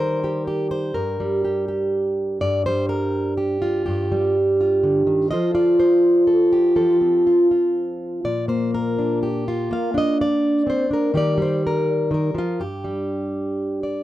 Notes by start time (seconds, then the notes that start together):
Already playing: D#3 G3 A#4 C5
0.24 G4
0.48 G4
0.71 C5
0.94 G2 A#4
1.20 G3
1.45 G4
1.68 G4
2.41 G2 D5
2.66 G3 C5
2.89 A#4
3.37 G4
3.62 F4
3.86 G2 G4
4.12 G3
4.61 F4
4.83 D3
5.07 D#3
5.31 F3 F4 A4 C5 D#5
5.54 F4 D5
5.80 C5
6.27 A4
6.53 G4
6.76 F3 A4
7.01 C4
7.27 F4
7.51 F4
8.24 A#2 D5
8.48 A#3 C5
8.74 A#4
8.98 D4
9.23 G4
9.48 F4
9.71 A#3 F5
9.94 D4 D#5
10.21 D5
10.67 C4 C5
10.91 D4 A#4
11.14 D#3 G3 G4 A#4 D5
11.38 G3
11.42 C5
11.67 A#4
12.11 D#3 A#4
12.35 F3 F4
12.60 G2 G4
12.84 G3
13.83 D5